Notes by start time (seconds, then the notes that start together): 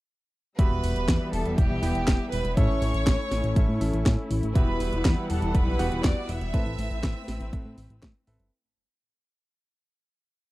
0.59 E1 E3 G3 B3 F#4 G4 B4 E5 B5, kick, closed hi-hat
0.71 E1
0.84 E1, open hi-hat
0.96 E1, closed hi-hat
1.08 E2, kick, snare, clap, closed hi-hat
1.33 E1 A4 A5, open hi-hat
1.45 E1, closed hi-hat
1.58 E1 G4 G5, kick, closed hi-hat
1.70 B1
1.83 E1 B3 E4 G4 G5, open hi-hat
1.95 E1, closed hi-hat
2.08 E1, kick, snare, clap, closed hi-hat
2.32 E1 B4 B5, open hi-hat
2.45 E1, closed hi-hat
2.57 A2 A3 C#4 E4 A4 C#5 E5 C#6, kick, closed hi-hat
2.69 A1
2.82 A1, open hi-hat
2.94 A1, closed hi-hat
3.07 A1, kick, snare, clap, closed hi-hat
3.31 A1, snare, open hi-hat
3.44 A1, closed hi-hat
3.56 A1 C#4 E4 A4 E5, kick, closed hi-hat
3.69 A2
3.81 A1 C#4 E4 A4 E5, open hi-hat
3.93 A1, closed hi-hat
4.06 A2, kick, snare, clap, closed hi-hat
4.31 A1, open hi-hat
4.43 A1, closed hi-hat
4.55 E1 E3 G3 B3 F#4 G4 B4 E5 F#5 B5, kick, closed hi-hat
4.68 E1
4.80 E1, open hi-hat
4.93 E1, closed hi-hat
5.05 E2, kick, snare, clap, closed hi-hat
5.30 E1 A4 A5, open hi-hat
5.42 E1, closed hi-hat
5.54 E1 B4 B5, kick, closed hi-hat
5.67 B1
5.79 E1 B3 F#4 G4 F#5, open hi-hat
5.92 E1, closed hi-hat
6.04 E1 D5 D6, kick, snare, clap, closed hi-hat
6.29 E1 E5 E6, open hi-hat
6.41 E1, closed hi-hat
6.54 A2 A3 C4 A4 B4 E5, kick, closed hi-hat
6.66 A1, closed hi-hat
6.78 A1, open hi-hat
6.91 A1, closed hi-hat
7.03 A1, kick, snare, clap, closed hi-hat
7.28 A1, snare, open hi-hat
7.40 A1, closed hi-hat
7.53 A1 C4 A4 B4 E5, kick, closed hi-hat
7.65 A2
7.78 A1, open hi-hat
7.90 A1, closed hi-hat
8.02 A2, kick, snare, clap, closed hi-hat
8.27 A1 C4 A4 B4 E5, open hi-hat
8.40 G1, closed hi-hat